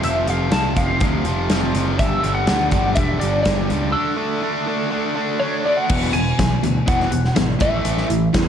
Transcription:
Already playing: overdriven electric guitar A3
0.01 picked electric bass F1, overdriven electric guitar F2 C3 F3, lead electric guitar E5, closed hi-hat
0.26 picked electric bass F1, overdriven electric guitar F2 C3 F3, lead electric guitar F5, closed hi-hat
0.50 picked electric bass C2, overdriven electric guitar F2 C3 F3, lead electric guitar A5, snare, closed hi-hat
0.75 picked electric bass F1, overdriven electric guitar F2 C3 F3, lead electric guitar F5, kick, closed hi-hat
1.00 picked electric bass D2, overdriven electric guitar F2 C3 F3, kick, closed hi-hat
1.24 picked electric bass F1, overdriven electric guitar F2 C3 F3, closed hi-hat
1.49 picked electric bass F1, overdriven electric guitar F2 C3 F3, snare, closed hi-hat
1.74 picked electric bass F#1, overdriven electric guitar F2 C3 F3, closed hi-hat
1.98 picked electric bass G1, overdriven electric guitar G2 D3 G3, lead electric guitar E5, kick, closed hi-hat
2.21 picked electric bass G1, overdriven electric guitar G2 D3 G3, closed hi-hat
2.35 lead electric guitar F#5
2.46 picked electric bass D2, overdriven electric guitar G2 D3 G3, snare, closed hi-hat
2.70 picked electric bass G1, overdriven electric guitar G2 D3 G3, kick, closed hi-hat
2.95 picked electric bass E1, overdriven electric guitar G2 D3 G3, lead electric guitar E5, kick, closed hi-hat
3.20 picked electric bass G1, overdriven electric guitar G2 D3 G3, lead electric guitar D5, closed hi-hat
3.43 picked electric bass G1, overdriven electric guitar G2 D3 G3, lead electric guitar D5, kick, snare, closed hi-hat
3.68 picked electric bass C#2, overdriven electric guitar G2 D3 G3, closed hi-hat
3.92 overdriven electric guitar D3 A3 D4, lead electric guitar A4
4.17 overdriven electric guitar D3 A3 D4
4.42 overdriven electric guitar D3 A3 D4
4.67 overdriven electric guitar D3 A3 D4
4.90 overdriven electric guitar D3 A3 D4
5.15 overdriven electric guitar D3 A3 D4
5.40 overdriven electric guitar D3 A3 D4, lead electric guitar C#5
5.65 overdriven electric guitar D3 A3 D4, lead electric guitar D5
5.77 lead electric guitar F#5
5.89 picked electric bass E1, overdriven electric guitar E2 B2 E3, kick, crash
6.03 snare
6.13 picked electric bass E1, overdriven electric guitar E2 B2, lead electric guitar G#5, closed hi-hat
6.38 picked electric bass B1, overdriven electric guitar E2 B2, kick, snare, closed hi-hat
6.62 picked electric bass D2, overdriven electric guitar E2 B2, closed hi-hat
6.86 picked electric bass E1, overdriven electric guitar E2 B2 E3, lead electric guitar F#5, kick, closed hi-hat
7.00 snare
7.10 picked electric bass E1, overdriven electric guitar E2 B2, closed hi-hat
7.24 snare
7.35 picked electric bass G#1, overdriven electric guitar E2 B2, snare, closed hi-hat
7.59 picked electric bass A1, overdriven electric guitar A2 E3 A3, lead electric guitar E5, kick, closed hi-hat
7.83 picked electric bass A1, overdriven electric guitar A2 E3 A3, closed hi-hat
7.97 snare
8.09 picked electric bass A1, overdriven electric guitar A2 E3, closed hi-hat
8.33 picked electric bass E2, overdriven electric guitar A2 E3, kick, snare, closed hi-hat

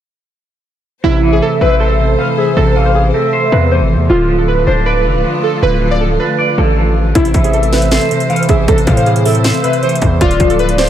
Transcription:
1.04 808-style bass A1, clean electric guitar C3, string section E3 A3 C5, synth keys E4, soft synth lead E5
1.23 clean electric guitar E3
1.32 synth keys G#4
1.42 synth keys A4
1.61 808-style bass A1, clean electric guitar C4, synth keys B4
1.80 synth keys A4, clean electric guitar C5
1.99 clean electric guitar C3
2.18 clean electric guitar E3, soft synth lead F5
2.38 synth keys G#4, soft synth lead E5
2.57 808-style bass A1, clean electric guitar C3, synth keys A4
2.76 clean electric guitar E3, soft synth lead F5
2.85 synth keys C5
2.95 synth keys G#4
3.14 clean electric guitar C4, synth keys A4, soft synth lead E5
3.33 clean electric guitar C5
3.52 808-style bass E2, clean electric guitar C3, synth keys B4
3.71 clean electric guitar E3, synth keys C5
3.81 808-style bass G#1
3.95 808-style bass E2
4.09 808-style bass D1, clean electric guitar D3, string section D3 F4, synth keys F4
4.29 clean electric guitar F3
4.38 synth keys A4
4.48 synth keys B4
4.67 808-style bass D1, clean electric guitar D4, synth keys C5
4.86 synth keys B4, clean electric guitar D5
5.05 808-style bass F1, clean electric guitar D3
5.15 808-style bass D1
5.24 clean electric guitar F3
5.43 synth keys A4
5.62 808-style bass D1, clean electric guitar D3, synth keys B4
5.81 clean electric guitar F3
5.91 synth keys D5
6.01 synth keys A4
6.20 clean electric guitar D4, synth keys B4
6.39 clean electric guitar D5
6.58 808-style bass A1, clean electric guitar D3, synth keys A4
6.77 clean electric guitar F3
7.15 808-style bass A1, clean electric guitar C3, string section E3 C5, synth keys E4, soft synth lead E5, kick, closed hi-hat
7.25 closed hi-hat
7.34 808-style bass A1, clean electric guitar E3, kick, closed hi-hat
7.44 synth keys G#4, closed hi-hat
7.53 synth keys A4, closed hi-hat
7.63 closed hi-hat
7.73 clean electric guitar C4, synth keys B4, snare, closed hi-hat
7.82 closed hi-hat
7.91 synth keys A4, clean electric guitar C5, snare, closed hi-hat
8.01 closed hi-hat
8.11 clean electric guitar C3, closed hi-hat
8.20 closed hi-hat
8.30 clean electric guitar E3, soft synth lead F5, closed hi-hat
8.36 closed hi-hat
8.43 closed hi-hat
8.49 808-style bass A1, synth keys G#4, soft synth lead E5, kick, closed hi-hat
8.68 808-style bass A1, clean electric guitar C3, synth keys A4, kick, closed hi-hat
8.78 closed hi-hat
8.87 808-style bass A2, clean electric guitar E3, soft synth lead F5, kick, closed hi-hat
8.97 synth keys C5, closed hi-hat
9.06 synth keys G#4, closed hi-hat
9.16 closed hi-hat
9.25 clean electric guitar C4, synth keys A4, soft synth lead E5, open hi-hat
9.35 closed hi-hat
9.44 clean electric guitar C5, snare, closed hi-hat
9.54 closed hi-hat
9.64 clean electric guitar C3, synth keys B4, closed hi-hat
9.73 closed hi-hat
9.83 clean electric guitar E3, synth keys C5, closed hi-hat
9.89 closed hi-hat
9.95 closed hi-hat
10.02 808-style bass E2, kick, closed hi-hat
10.21 808-style bass D1, clean electric guitar D3, string section D3 A3 F4, synth keys F4, soft synth lead D5, kick, closed hi-hat
10.31 closed hi-hat
10.40 808-style bass D1, clean electric guitar F3, kick, closed hi-hat
10.50 synth keys A4, closed hi-hat
10.59 synth keys B4, closed hi-hat
10.69 closed hi-hat
10.78 clean electric guitar D4, synth keys C5, snare, closed hi-hat

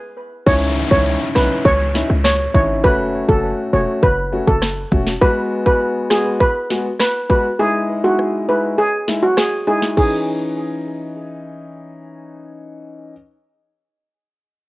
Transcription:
0.46 808-style bass C#2, grand piano C#4 D#4 E4, steel pan C#5, kick, closed hi-hat, crash, downlifter
0.61 closed hi-hat
0.76 closed hi-hat
0.91 808-style bass C#2, grand piano C#4 D#4 E4, steel pan C#5, kick
1.06 closed hi-hat
1.21 closed hi-hat
1.35 808-style bass B1, grand piano C#4 D#4 E4, steel pan B4, cross-stick, snare, closed hi-hat
1.65 808-style bass C#2, steel pan C#5, kick, closed hi-hat
1.80 closed hi-hat
1.95 grand piano C#4 D#4 E4, snare, closed hi-hat
2.10 808-style bass C#2
2.24 steel pan C#5, cross-stick, snare, closed hi-hat
2.40 closed hi-hat
2.54 808-style bass G#1, grand piano C#4 D#4 E4, steel pan C#5, kick, closed hi-hat
2.84 808-style bass F#1, grand piano A3 C#4 F#4, steel pan B4, kick
3.28 808-style bass F#1, grand piano A3 C#4 F#4, steel pan A4, kick
3.73 808-style bass E1, grand piano A3 C#4 F#4, steel pan C#5
4.03 808-style bass F#1, steel pan B4, kick
4.32 grand piano A3 C#4 F#4
4.47 808-style bass F#1, steel pan A4, kick
4.62 cross-stick, snare
4.92 808-style bass E1, grand piano A3 C#4 F#4, kick
5.07 snare
5.21 grand piano G#3 B3 F#4, steel pan B4, kick
5.66 grand piano G#3 B3 F#4, steel pan B4, kick
6.10 grand piano G#3 B3 F#4, steel pan G#4, cross-stick, snare
6.40 steel pan B4, kick
6.70 grand piano G#3 B3 F#4, snare
6.99 steel pan B4, cross-stick, snare
7.29 grand piano G#3 B3 F#4, steel pan B4, kick
7.59 grand piano G#3 D#4 E4, steel pan G#4
8.04 grand piano G#3 D#4 E4, steel pan F#4
8.19 cross-stick
8.48 grand piano G#3 D#4 E4, steel pan B4
8.78 steel pan G#4
9.08 grand piano G#3 D#4 E4, snare
9.23 steel pan F#4
9.37 steel pan G#4, cross-stick, snare
9.67 grand piano G#3 D#4 E4, steel pan G#4
9.82 snare
9.96 grand piano E3 C#4 D#4, steel pan G#4, kick, crash

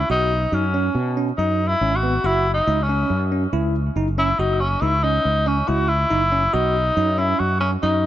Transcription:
0.09 fretless electric bass B1, tenor saxophone D#4, tine electric piano F#4
0.52 fretless electric bass F#2, tenor saxophone C#4, tine electric piano D#4
0.74 tine electric piano C#4
0.95 fretless electric bass B2
1.17 tine electric piano C#4
1.37 fretless electric bass F#2, tenor saxophone D#4, tine electric piano D#4
1.68 tenor saxophone E4
1.81 fretless electric bass G#1, tine electric piano C#4
1.96 tenor saxophone F#4
2.03 tine electric piano B3
2.24 fretless electric bass F#1, tenor saxophone E4, tine electric piano F#4
2.54 tenor saxophone D#4
2.67 fretless electric bass C#2, tine electric piano D#4
2.83 tenor saxophone C#4
2.89 tine electric piano C#4
3.10 fretless electric bass F#2
3.32 tine electric piano C#4
3.52 fretless electric bass C#2, tine electric piano E4
3.96 fretless electric bass F#1, tine electric piano D#4
4.18 tine electric piano C#4, tenor saxophone E4
4.39 fretless electric bass F#1, tenor saxophone D#4, tine electric piano F#4
4.60 tenor saxophone C#4
4.81 fretless electric bass C#2, tine electric piano D#4, tenor saxophone E4
5.04 tine electric piano C#4, tenor saxophone D#4
5.25 fretless electric bass C#2
5.46 tine electric piano C#4, tenor saxophone C#4
5.68 fretless electric bass C#2, tine electric piano E4, tenor saxophone F#4
5.88 tenor saxophone E4
6.11 fretless electric bass F#1, tine electric piano D#4
6.32 tine electric piano C#4
6.54 fretless electric bass B1, tenor saxophone D#4, tine electric piano F#4
6.97 fretless electric bass F#2, tine electric piano D#4
7.18 tine electric piano C#4, tenor saxophone E4
7.39 fretless electric bass F#2, tenor saxophone F#4
7.60 tenor saxophone C#4, tine electric piano C#4
7.82 fretless electric bass F#2, tenor saxophone D#4, tine electric piano D#4

